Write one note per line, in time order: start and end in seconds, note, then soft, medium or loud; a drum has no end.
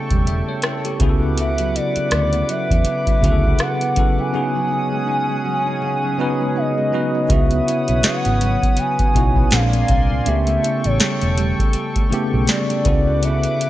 0.00 0.99 C#3 medium
0.00 1.00 C#3 medium
0.00 0.48 A3 medium
0.00 1.02 A3 medium
0.00 1.00 B3 medium
0.00 0.26 E4 medium
0.00 0.86 G4 medium
0.00 0.98 A4 medium
0.00 0.98 G5 medium
0.00 0.98 C#6 medium
0.11 0.41 E1 medium
0.11 1.09 G3 medium
0.11 kick medium
0.11 closed hi-hat medium
0.27 0.63 E4 medium
0.27 0.47 E5 medium
0.27 closed hi-hat medium
0.48 0.85 A3 medium
0.48 0.63 C#5 medium
0.62 1.22 E4 medium
0.62 0.84 A4 medium
0.62 cross-stick loud
0.62 closed hi-hat medium
0.85 1.96 A3 medium
0.85 1.20 G4 medium
0.85 closed hi-hat medium
0.99 1.77 C#2 medium
0.99 2.24 C#3 medium
0.99 1.37 C#3 medium
0.99 2.24 B3 medium
0.99 2.24 E4 medium
0.99 2.25 F#4 medium
0.99 1.09 G#4 medium
0.99 4.30 B4 medium
0.99 7.26 F#5 medium
0.99 4.30 D6 medium
0.99 kick loud
0.99 closed hi-hat medium
1.09 2.28 A4 medium
1.22 1.74 E4 medium
1.38 2.85 C#3 medium
1.38 1.77 E5 medium
1.38 closed hi-hat medium
1.58 2.49 F#3 medium
1.58 closed hi-hat medium
1.75 2.12 E4 medium
1.75 2.49 D5 medium
1.75 closed hi-hat medium
1.96 2.33 B3 medium
1.96 muted fingered electric bass stroke soft
1.96 closed hi-hat medium
2.11 2.41 D2 medium
2.11 2.70 E4 medium
2.11 cross-stick loud
2.11 closed hi-hat medium
2.33 3.44 B3 medium
2.33 closed hi-hat medium
2.49 3.07 F#3 medium
2.49 3.62 E5 loud
2.49 closed hi-hat medium
2.70 2.83 E2 medium
2.70 3.22 E4 medium
2.70 kick medium
2.70 closed hi-hat soft
2.85 4.33 C#3 medium
2.85 closed hi-hat medium
3.07 3.96 F#3 medium
3.07 kick medium
3.07 closed hi-hat soft
3.22 3.52 D2 loud
3.22 3.85 C#3 medium
3.22 3.86 B3 medium
3.22 3.59 E4 medium
3.22 3.86 E4 medium
3.22 3.86 F#4 medium
3.22 3.31 G#4 medium
3.22 kick medium
3.22 closed hi-hat medium
3.31 3.90 A4 medium
3.44 3.81 B3 medium
3.44 kick medium
3.59 4.18 E4 medium
3.59 4.21 F#5 loud
3.59 cross-stick loud
3.59 closed hi-hat medium
3.81 4.92 B3 medium
3.81 closed hi-hat medium
3.96 4.28 C#3 medium
3.96 4.55 F#3 medium
3.96 4.28 B3 medium
3.96 4.29 E4 medium
3.96 4.29 F#4 medium
3.96 4.29 A4 medium
3.96 kick loud
3.96 closed hi-hat medium
4.18 4.58 E4 medium
4.18 6.56 G#5 loud
4.33 5.57 C#3 medium
4.33 5.80 C#3 medium
4.33 5.57 B3 medium
4.33 7.27 C#4 medium
4.33 5.58 D#4 medium
4.33 5.58 F#4 medium
4.33 7.27 G#4 medium
4.33 5.58 G#4 medium
4.33 7.27 D#6 medium
4.55 5.44 F#3 medium
4.71 5.07 D#4 medium
4.92 5.29 G#3 medium
5.08 5.66 D#4 medium
5.29 6.40 G#3 medium
5.45 6.03 F#3 medium
5.66 6.18 D#4 medium
5.82 7.29 C#3 medium
6.03 6.93 F#3 medium
6.18 6.81 C#3 medium
6.18 6.82 B3 medium
6.18 6.55 D#4 medium
6.18 6.82 D#4 medium
6.18 6.83 F#4 medium
6.18 6.83 B4 loud
6.40 6.77 G#3 medium
6.56 7.14 D#4 medium
6.56 7.32 D#5 loud
6.77 7.51 G#3 medium
6.92 7.24 C#3 medium
6.92 7.70 F#3 medium
6.92 7.24 B3 medium
6.92 7.25 D#4 medium
6.92 7.25 F#4 medium
6.92 7.26 B4 medium
7.14 7.67 D#4 medium
7.29 7.60 C#2 medium
7.29 8.53 C#3 medium
7.29 8.77 C#3 medium
7.29 8.53 B3 medium
7.29 8.54 C#4 medium
7.29 8.54 E4 medium
7.29 8.55 F#4 medium
7.29 9.50 B4 medium
7.29 9.50 C#5 medium
7.29 8.06 E5 loud
7.29 9.50 F#5 medium
7.29 9.50 D#6 medium
7.29 kick loud
7.29 closed hi-hat medium
7.51 7.87 B3 medium
7.51 closed hi-hat medium
7.67 9.13 E4 medium
7.67 closed hi-hat medium
7.88 8.01 B1 medium
7.88 8.24 B3 medium
7.88 closed hi-hat medium
8.03 8.40 F#3 medium
8.03 8.80 F#5 loud
8.03 muted fingered electric bass stroke soft
8.03 snare loud
8.03 closed hi-hat medium
8.25 8.55 G#1 medium
8.25 8.61 B3 medium
8.25 closed hi-hat medium
8.41 9.61 F#3 medium
8.41 closed hi-hat medium
8.62 8.98 B3 medium
8.62 kick medium
8.62 closed hi-hat medium
8.77 9.61 C#3 medium
8.77 9.54 G#5 loud
8.77 closed hi-hat medium
8.99 9.35 B3 medium
8.99 muted fingered electric bass stroke soft
8.99 kick medium
8.99 closed hi-hat medium
9.14 9.45 B1 loud
9.14 9.52 C#3 medium
9.14 9.52 B3 medium
9.14 9.52 D#4 medium
9.14 9.61 E4 medium
9.14 9.53 E4 medium
9.14 9.53 F#4 medium
9.14 kick medium
9.14 closed hi-hat medium
9.36 9.61 B3 medium
9.36 kick medium
9.51 9.82 A#1 medium
9.51 10.15 A#2 medium
9.51 10.35 A#2 medium
9.51 10.15 G#3 medium
9.51 10.16 C4 medium
9.51 10.16 D4 medium
9.51 10.25 A#4 medium
9.51 10.25 D5 medium
9.51 10.28 F5 loud
9.51 10.25 G#5 medium
9.51 10.25 C6 medium
9.51 snare loud
9.51 closed hi-hat medium
9.73 10.09 C4 medium
9.73 closed hi-hat medium
9.88 10.19 C2 medium
9.88 10.35 G#3 medium
9.88 kick loud
9.88 closed hi-hat medium
10.10 10.35 C4 medium
10.25 10.56 C#2 loud
10.25 11.49 C#3 medium
10.25 11.73 C#3 medium
10.25 11.50 A3 medium
10.25 11.50 B3 medium
10.25 11.51 G4 medium
10.25 12.83 A4 medium
10.25 10.87 E5 loud
10.25 12.83 G5 medium
10.25 12.83 C#6 medium
10.25 closed hi-hat medium
10.47 10.84 A3 medium
10.47 closed hi-hat medium
10.63 12.11 E4 medium
10.63 closed hi-hat medium
10.84 10.98 A1 medium
10.84 11.21 A3 medium
10.84 11.59 C#5 medium
10.84 closed hi-hat medium
11.00 11.36 G3 medium
11.00 snare loud
11.00 closed hi-hat medium
11.21 11.52 E1 medium
11.21 11.58 A3 medium
11.21 closed hi-hat medium
11.37 12.47 G3 medium
11.37 closed hi-hat medium
11.59 11.95 A3 medium
11.59 kick medium
11.59 closed hi-hat medium
11.73 12.84 C#3 medium
11.73 closed hi-hat medium
11.96 12.33 A3 medium
11.96 kick medium
11.96 closed hi-hat medium
12.10 12.83 C#3 medium
12.10 12.85 A3 medium
12.10 12.84 B3 medium
12.10 13.59 E4 medium
12.10 12.87 G4 loud
12.10 muted fingered electric bass stroke soft
12.10 closed hi-hat medium
12.33 12.46 B1 medium
12.33 12.70 A3 medium
12.47 12.94 G3 medium
12.47 13.25 D5 medium
12.47 snare loud
12.47 closed hi-hat medium
12.70 13.06 A3 medium
12.70 closed hi-hat medium
12.84 13.45 C#2 medium
12.84 13.70 C#3 medium
12.84 13.22 C#3 medium
12.84 13.70 B3 medium
12.84 13.70 E4 medium
12.84 13.70 F#4 medium
12.84 13.70 A4 medium
12.84 13.70 B4 medium
12.84 13.70 F#5 medium
12.84 13.70 D6 medium
12.84 kick loud
12.84 closed hi-hat medium
13.07 13.44 B3 medium
13.23 13.70 C#3 medium
13.23 13.70 E5 loud
13.23 closed hi-hat medium
13.43 13.70 B3 medium
13.43 closed hi-hat medium
13.60 13.70 E4 medium
13.60 closed hi-hat medium